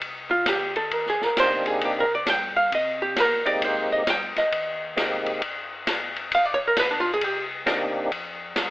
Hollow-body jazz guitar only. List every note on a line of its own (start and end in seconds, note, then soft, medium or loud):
0.31 0.46 F4 medium
0.49 0.76 G4 medium
0.76 0.94 A4 medium
0.94 1.08 A#4 medium
1.10 1.25 G#4 medium
1.25 1.38 A#4 medium
1.40 1.67 C5 loud
1.67 1.82 G#4 medium
1.85 1.98 G4 medium
2.00 2.13 A#4 medium
2.15 2.28 D5 medium
2.30 2.56 G5 loud
2.56 2.72 F5 medium
2.75 3.02 D#5 medium
3.02 3.20 G4 medium
3.20 3.47 A#4 medium
3.47 3.62 D5 loud
3.65 3.92 C5 medium
3.92 4.07 D#5 medium
4.10 4.37 G5 loud
4.38 4.94 D#5 medium
6.35 6.45 F5 medium
6.45 6.60 D5 medium
6.54 6.65 C#5 loud
6.67 6.76 A#4 medium
6.79 6.92 B4 medium
6.91 7.05 D4 medium
7.00 7.10 F4 loud
7.14 7.24 G#4 medium
7.24 7.41 G4 medium